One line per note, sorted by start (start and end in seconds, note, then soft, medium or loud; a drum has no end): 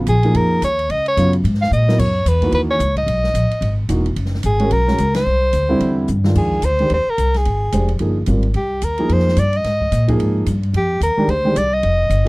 0.07 0.33 A#1 medium
0.07 0.38 G#4 medium
0.07 hi-hat pedal soft
0.07 ride medium
0.23 0.60 F3 medium
0.23 0.60 A#3 medium
0.23 0.60 D#4 medium
0.23 0.61 G#4 medium
0.23 ride soft
0.34 0.61 F2 medium
0.34 0.63 A#4 medium
0.34 ride medium
0.62 0.88 D#2 medium
0.62 0.93 C#5 medium
0.62 hi-hat pedal medium
0.62 ride medium
0.79 ride soft
0.89 1.16 C#2 medium
0.89 1.06 D#5 medium
0.89 ride medium
1.06 1.32 C#5 medium
1.06 ride soft
1.17 1.43 F#2 medium
1.17 1.32 C#3 medium
1.17 1.32 F#3 medium
1.17 1.32 B3 medium
1.17 1.32 F4 medium
1.17 hi-hat pedal soft
1.17 ride medium
1.33 ride soft
1.44 1.70 G#2 medium
1.44 ride medium
1.54 snare soft
1.61 1.71 F5 medium
1.61 snare soft
1.71 1.98 A#2 medium
1.71 2.01 D#5 medium
1.71 hi-hat pedal soft
1.88 1.97 F#3 medium
1.88 1.98 B3 medium
1.88 1.98 E4 medium
1.88 1.98 A#4 medium
1.88 snare medium
1.99 2.25 F#2 medium
1.99 2.30 C#5 medium
1.99 kick medium
1.99 crash medium
2.25 2.51 E2 medium
2.25 2.54 B4 medium
2.25 hi-hat pedal medium
2.25 ride medium
2.42 2.78 E3 medium
2.42 2.78 A#3 medium
2.42 2.78 D#4 medium
2.42 2.79 F#4 medium
2.42 kick medium
2.42 ride soft
2.52 2.79 D#2 medium
2.52 2.61 B4 medium
2.52 ride medium
2.71 2.95 C#5 medium
2.79 3.06 C#2 loud
2.79 hi-hat pedal medium
2.79 ride medium
2.96 3.75 D#5 medium
2.96 kick medium
2.96 ride soft
3.06 3.33 B1 medium
3.06 ride medium
3.24 snare soft
3.34 3.49 A#1 medium
3.34 hi-hat pedal medium
3.34 ride medium
3.51 muted upright bass stroke soft
3.51 ride soft
3.61 3.88 G#1 medium
3.61 ride medium
3.89 4.16 E1 medium
3.89 4.04 E3 medium
3.89 4.04 A#3 soft
3.89 4.04 D#4 medium
3.89 4.04 F#4 medium
3.89 hi-hat pedal soft
3.89 ride medium
4.06 ride soft
4.16 4.43 F#1 medium
4.16 ride medium
4.25 snare soft
4.35 snare soft
4.43 4.70 G#1 medium
4.43 4.74 G#4 medium
4.43 hi-hat pedal medium
4.43 ride medium
4.59 4.70 G#3 medium
4.59 4.70 C#4 medium
4.59 4.70 F#4 medium
4.59 4.71 A#4 medium
4.59 ride soft
4.71 4.98 B1 medium
4.71 5.15 A#4 loud
4.71 ride medium
4.87 4.97 G#3 medium
4.87 4.98 C#4 medium
4.87 4.98 F#4 medium
4.87 4.98 A#4 medium
4.87 snare soft
4.98 5.25 C#2 medium
4.98 hi-hat pedal soft
4.98 ride medium
5.14 6.05 C5 medium
5.14 snare medium
5.14 ride medium
5.26 5.53 C2 medium
5.53 5.80 D2 medium
5.53 hi-hat pedal medium
5.53 ride medium
5.69 6.06 D3 medium
5.69 6.06 G3 medium
5.69 6.06 C4 medium
5.69 6.06 E4 medium
5.80 6.07 E2 medium
5.80 ride medium
6.07 6.35 G2 medium
6.07 hi-hat pedal medium
6.24 6.61 D#3 medium
6.24 6.61 G#3 medium
6.24 6.61 D4 medium
6.24 6.61 F4 medium
6.24 snare medium
6.35 6.62 F2 medium
6.35 6.66 G#4 medium
6.35 kick medium
6.35 crash medium
6.52 kick soft
6.62 6.89 D2 medium
6.62 6.91 C5 loud
6.62 hi-hat pedal medium
6.62 ride medium
6.79 6.90 D#3 medium
6.79 6.90 G#3 soft
6.79 6.90 D4 soft
6.79 6.90 G4 medium
6.79 ride soft
6.90 7.06 D#2 medium
6.90 7.12 C5 loud
6.90 ride medium
7.07 7.39 A#4 medium
7.07 muted upright bass stroke soft
7.18 7.45 C2 medium
7.18 hi-hat pedal medium
7.18 ride medium
7.34 7.91 G#4 medium
7.34 snare soft
7.34 ride soft
7.45 7.72 G#1 medium
7.45 ride medium
7.72 7.99 F1 medium
7.72 7.87 G#3 medium
7.72 7.87 D4 soft
7.72 7.88 G4 medium
7.72 7.88 C5 medium
7.72 hi-hat pedal medium
7.72 ride medium
7.88 ride soft
7.99 8.27 G1 medium
7.99 8.15 F3 medium
7.99 8.15 A#3 soft
7.99 8.15 D#4 medium
7.99 8.16 G#4 medium
7.99 ride medium
8.26 8.54 G#1 medium
8.26 8.42 G3 medium
8.26 8.42 C4 soft
8.26 8.43 F4 soft
8.26 8.43 A#4 medium
8.26 hi-hat pedal soft
8.26 ride medium
8.43 ride soft
8.54 8.81 C2 medium
8.54 8.86 G4 medium
8.54 ride soft
8.82 9.08 D#2 medium
8.82 9.14 A#4 medium
8.82 hi-hat pedal medium
8.82 ride medium
8.98 9.35 F3 medium
8.98 9.35 A#3 medium
8.98 9.36 D#4 medium
8.98 9.36 G#4 medium
8.98 ride soft
9.09 9.36 F2 medium
9.09 9.41 C5 medium
9.09 ride medium
9.19 snare soft
9.28 snare soft
9.36 9.64 G2 medium
9.36 9.59 D5 medium
9.36 hi-hat pedal medium
9.36 ride medium
9.53 ride soft
9.57 10.10 D#5 medium
9.64 9.91 G#2 medium
9.64 snare soft
9.64 ride medium
9.81 kick medium
9.92 10.18 A#2 medium
9.92 hi-hat pedal medium
9.92 ride medium
10.08 10.44 F3 medium
10.08 10.45 A#3 medium
10.08 10.45 D#4 medium
10.08 10.45 G#4 medium
10.08 kick soft
10.08 ride soft
10.19 10.46 G#2 medium
10.19 ride medium
10.46 10.73 G2 medium
10.46 hi-hat pedal medium
10.46 ride medium
10.63 ride soft
10.74 11.00 F2 medium
10.74 11.01 G4 medium
10.74 ride medium
11.00 11.16 D#2 medium
11.00 11.32 A#4 medium
11.00 hi-hat pedal medium
11.00 ride medium
11.17 11.27 D#3 medium
11.17 11.28 G#3 medium
11.17 11.28 D4 medium
11.17 11.28 G4 medium
11.17 muted upright bass stroke soft
11.27 11.55 D2 medium
11.27 11.59 C5 medium
11.27 ride medium
11.45 11.55 D#3 medium
11.45 11.55 G#3 medium
11.45 11.55 D4 medium
11.45 11.55 G4 medium
11.55 11.82 C2 medium
11.55 11.75 D5 medium
11.55 hi-hat pedal medium
11.55 ride medium
11.74 12.28 D#5 medium
11.83 12.09 F1 medium
11.83 ride medium
12.10 12.28 G1 medium
12.10 hi-hat pedal soft
12.10 ride medium
12.25 12.28 F3 medium